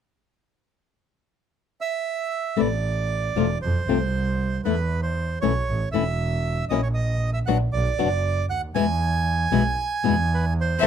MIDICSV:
0, 0, Header, 1, 6, 480
1, 0, Start_track
1, 0, Tempo, 516796
1, 472, Time_signature, 4, 2, 24, 8
1, 10095, End_track
2, 0, Start_track
2, 0, Title_t, "Violin"
2, 0, Program_c, 0, 40
2, 10050, Note_on_c, 0, 76, 85
2, 10095, Note_off_c, 0, 76, 0
2, 10095, End_track
3, 0, Start_track
3, 0, Title_t, "Bandoneon"
3, 0, Program_c, 1, 23
3, 1680, Note_on_c, 1, 76, 61
3, 2407, Note_on_c, 1, 74, 64
3, 2421, Note_off_c, 1, 76, 0
3, 3329, Note_off_c, 1, 74, 0
3, 3361, Note_on_c, 1, 72, 56
3, 4285, Note_off_c, 1, 72, 0
3, 4314, Note_on_c, 1, 71, 57
3, 4650, Note_off_c, 1, 71, 0
3, 4669, Note_on_c, 1, 72, 58
3, 5005, Note_off_c, 1, 72, 0
3, 5026, Note_on_c, 1, 73, 62
3, 5470, Note_off_c, 1, 73, 0
3, 5497, Note_on_c, 1, 76, 64
3, 6176, Note_off_c, 1, 76, 0
3, 6218, Note_on_c, 1, 75, 66
3, 6329, Note_off_c, 1, 75, 0
3, 6340, Note_on_c, 1, 73, 58
3, 6393, Note_off_c, 1, 73, 0
3, 6447, Note_on_c, 1, 75, 65
3, 6785, Note_off_c, 1, 75, 0
3, 6812, Note_on_c, 1, 76, 60
3, 6866, Note_off_c, 1, 76, 0
3, 6929, Note_on_c, 1, 78, 65
3, 7038, Note_off_c, 1, 78, 0
3, 7175, Note_on_c, 1, 74, 70
3, 7856, Note_off_c, 1, 74, 0
3, 7894, Note_on_c, 1, 78, 77
3, 8001, Note_off_c, 1, 78, 0
3, 8126, Note_on_c, 1, 80, 79
3, 9606, Note_on_c, 1, 71, 59
3, 9711, Note_off_c, 1, 71, 0
3, 9786, Note_off_c, 1, 80, 0
3, 9851, Note_on_c, 1, 72, 65
3, 10095, Note_off_c, 1, 72, 0
3, 10095, End_track
4, 0, Start_track
4, 0, Title_t, "String section"
4, 0, Program_c, 2, 48
4, 10057, Note_on_c, 2, 60, 55
4, 10058, Note_on_c, 2, 59, 62
4, 10062, Note_on_c, 2, 69, 67
4, 10095, Note_off_c, 2, 59, 0
4, 10095, Note_off_c, 2, 60, 0
4, 10095, Note_off_c, 2, 69, 0
4, 10095, End_track
5, 0, Start_track
5, 0, Title_t, "Nylon-string guitar"
5, 0, Program_c, 3, 24
5, 2383, Note_on_c, 3, 48, 50
5, 2383, Note_on_c, 3, 57, 64
5, 2387, Note_on_c, 3, 52, 55
5, 2388, Note_on_c, 3, 59, 56
5, 2394, Note_on_c, 3, 64, 61
5, 2473, Note_off_c, 3, 48, 0
5, 2474, Note_off_c, 3, 57, 0
5, 2475, Note_off_c, 3, 52, 0
5, 2476, Note_off_c, 3, 59, 0
5, 2479, Note_off_c, 3, 64, 0
5, 3120, Note_on_c, 3, 53, 60
5, 3124, Note_on_c, 3, 48, 56
5, 3129, Note_on_c, 3, 57, 65
5, 3129, Note_on_c, 3, 60, 55
5, 3132, Note_on_c, 3, 65, 61
5, 3204, Note_off_c, 3, 53, 0
5, 3205, Note_off_c, 3, 48, 0
5, 3208, Note_off_c, 3, 57, 0
5, 3208, Note_off_c, 3, 60, 0
5, 3210, Note_off_c, 3, 65, 0
5, 3607, Note_on_c, 3, 48, 51
5, 3612, Note_on_c, 3, 57, 61
5, 3614, Note_on_c, 3, 60, 64
5, 3615, Note_on_c, 3, 53, 56
5, 3615, Note_on_c, 3, 65, 63
5, 3688, Note_off_c, 3, 48, 0
5, 3691, Note_off_c, 3, 57, 0
5, 3692, Note_off_c, 3, 53, 0
5, 3692, Note_off_c, 3, 60, 0
5, 3692, Note_off_c, 3, 65, 0
5, 4320, Note_on_c, 3, 52, 57
5, 4322, Note_on_c, 3, 59, 59
5, 4323, Note_on_c, 3, 57, 57
5, 4329, Note_on_c, 3, 64, 57
5, 4404, Note_off_c, 3, 52, 0
5, 4405, Note_off_c, 3, 57, 0
5, 4405, Note_off_c, 3, 59, 0
5, 4408, Note_off_c, 3, 64, 0
5, 5036, Note_on_c, 3, 52, 54
5, 5039, Note_on_c, 3, 57, 67
5, 5044, Note_on_c, 3, 61, 61
5, 5044, Note_on_c, 3, 64, 68
5, 5118, Note_off_c, 3, 52, 0
5, 5119, Note_off_c, 3, 57, 0
5, 5122, Note_off_c, 3, 61, 0
5, 5122, Note_off_c, 3, 64, 0
5, 5512, Note_on_c, 3, 52, 52
5, 5514, Note_on_c, 3, 57, 66
5, 5521, Note_on_c, 3, 61, 64
5, 5523, Note_on_c, 3, 64, 67
5, 5592, Note_off_c, 3, 52, 0
5, 5593, Note_off_c, 3, 57, 0
5, 5597, Note_off_c, 3, 61, 0
5, 5598, Note_off_c, 3, 64, 0
5, 6227, Note_on_c, 3, 54, 60
5, 6233, Note_on_c, 3, 61, 67
5, 6236, Note_on_c, 3, 58, 60
5, 6240, Note_on_c, 3, 64, 63
5, 6306, Note_off_c, 3, 54, 0
5, 6309, Note_off_c, 3, 61, 0
5, 6310, Note_off_c, 3, 58, 0
5, 6312, Note_off_c, 3, 64, 0
5, 6943, Note_on_c, 3, 47, 58
5, 6945, Note_on_c, 3, 54, 67
5, 6948, Note_on_c, 3, 59, 60
5, 6949, Note_on_c, 3, 66, 70
5, 6953, Note_on_c, 3, 62, 67
5, 7022, Note_off_c, 3, 47, 0
5, 7023, Note_off_c, 3, 54, 0
5, 7024, Note_off_c, 3, 59, 0
5, 7025, Note_off_c, 3, 66, 0
5, 7027, Note_off_c, 3, 62, 0
5, 7416, Note_on_c, 3, 59, 62
5, 7418, Note_on_c, 3, 47, 64
5, 7419, Note_on_c, 3, 54, 58
5, 7423, Note_on_c, 3, 62, 68
5, 7423, Note_on_c, 3, 66, 70
5, 7498, Note_off_c, 3, 59, 0
5, 7499, Note_off_c, 3, 47, 0
5, 7500, Note_off_c, 3, 54, 0
5, 7501, Note_off_c, 3, 66, 0
5, 7502, Note_off_c, 3, 62, 0
5, 8123, Note_on_c, 3, 47, 58
5, 8132, Note_on_c, 3, 52, 67
5, 8132, Note_on_c, 3, 56, 72
5, 8132, Note_on_c, 3, 59, 68
5, 8136, Note_on_c, 3, 64, 73
5, 8211, Note_off_c, 3, 47, 0
5, 8215, Note_off_c, 3, 52, 0
5, 8215, Note_off_c, 3, 59, 0
5, 8216, Note_off_c, 3, 56, 0
5, 8217, Note_off_c, 3, 64, 0
5, 8839, Note_on_c, 3, 47, 71
5, 8844, Note_on_c, 3, 52, 65
5, 8844, Note_on_c, 3, 56, 70
5, 8846, Note_on_c, 3, 59, 73
5, 8851, Note_on_c, 3, 64, 72
5, 8928, Note_off_c, 3, 47, 0
5, 8931, Note_off_c, 3, 52, 0
5, 8931, Note_off_c, 3, 56, 0
5, 8932, Note_off_c, 3, 59, 0
5, 8934, Note_off_c, 3, 64, 0
5, 9322, Note_on_c, 3, 47, 66
5, 9326, Note_on_c, 3, 52, 58
5, 9329, Note_on_c, 3, 59, 72
5, 9331, Note_on_c, 3, 56, 70
5, 9331, Note_on_c, 3, 64, 66
5, 9414, Note_off_c, 3, 47, 0
5, 9416, Note_off_c, 3, 52, 0
5, 9418, Note_off_c, 3, 59, 0
5, 9419, Note_off_c, 3, 56, 0
5, 9419, Note_off_c, 3, 64, 0
5, 10056, Note_on_c, 3, 52, 72
5, 10057, Note_on_c, 3, 48, 65
5, 10057, Note_on_c, 3, 57, 65
5, 10060, Note_on_c, 3, 59, 73
5, 10060, Note_on_c, 3, 64, 69
5, 10095, Note_off_c, 3, 48, 0
5, 10095, Note_off_c, 3, 52, 0
5, 10095, Note_off_c, 3, 57, 0
5, 10095, Note_off_c, 3, 59, 0
5, 10095, Note_off_c, 3, 64, 0
5, 10095, End_track
6, 0, Start_track
6, 0, Title_t, "Double bass"
6, 0, Program_c, 4, 43
6, 2395, Note_on_c, 4, 33, 64
6, 3083, Note_off_c, 4, 33, 0
6, 3122, Note_on_c, 4, 28, 65
6, 3323, Note_off_c, 4, 28, 0
6, 3365, Note_on_c, 4, 41, 71
6, 3565, Note_off_c, 4, 41, 0
6, 3603, Note_on_c, 4, 36, 70
6, 4286, Note_off_c, 4, 36, 0
6, 4321, Note_on_c, 4, 40, 61
6, 4999, Note_off_c, 4, 40, 0
6, 5043, Note_on_c, 4, 35, 70
6, 5238, Note_off_c, 4, 35, 0
6, 5277, Note_on_c, 4, 33, 66
6, 5473, Note_off_c, 4, 33, 0
6, 5514, Note_on_c, 4, 28, 72
6, 6186, Note_off_c, 4, 28, 0
6, 6223, Note_on_c, 4, 34, 75
6, 6900, Note_off_c, 4, 34, 0
6, 6938, Note_on_c, 4, 34, 74
6, 7137, Note_off_c, 4, 34, 0
6, 7171, Note_on_c, 4, 35, 75
6, 7373, Note_off_c, 4, 35, 0
6, 7416, Note_on_c, 4, 30, 74
6, 7885, Note_off_c, 4, 30, 0
6, 7891, Note_on_c, 4, 38, 46
6, 8118, Note_off_c, 4, 38, 0
6, 8124, Note_on_c, 4, 40, 70
6, 8809, Note_off_c, 4, 40, 0
6, 8837, Note_on_c, 4, 35, 68
6, 9046, Note_off_c, 4, 35, 0
6, 9326, Note_on_c, 4, 40, 77
6, 10027, Note_off_c, 4, 40, 0
6, 10062, Note_on_c, 4, 33, 79
6, 10095, Note_off_c, 4, 33, 0
6, 10095, End_track
0, 0, End_of_file